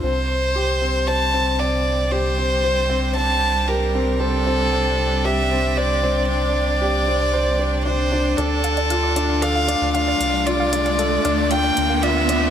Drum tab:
HH |----------------|----------------|----------------|----------------|

HH |x-xxx-x-x-x-x-x-|x-xxx-x-x-x-x-x-|